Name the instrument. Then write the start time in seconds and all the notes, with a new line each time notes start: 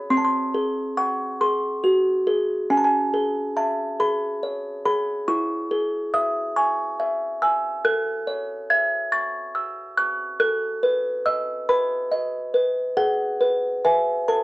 music box
Already playing: C#5
0.10 C4 C6
0.17 A5
0.24 C6
0.54 G#4
0.97 F#5 C#6
1.41 G#4 C6
1.84 F#4
2.27 G#4
2.70 C#4 G#5
2.77 A5
2.84 G#5
3.14 G#4
3.57 E5 A5
4.00 G#4 B5
4.43 C#5
4.86 G#4 B5
5.28 E4 C#6
5.71 G#4
6.14 E5 D#6
6.56 G#5 C#6
7.00 E5
7.42 G#5 E6
7.85 A4 F#6
8.27 C#5
8.70 E5 G#6
9.12 C#6 A6
9.55 E6
9.97 C#6 F#6
10.40 A4 F#6
10.83 B4
11.26 D#5 E6
11.69 B4 B5
12.11 D#5
12.54 B4
12.97 G#4 F#5
13.41 B4
13.84 B4 E5 G#5
14.28 A4 A5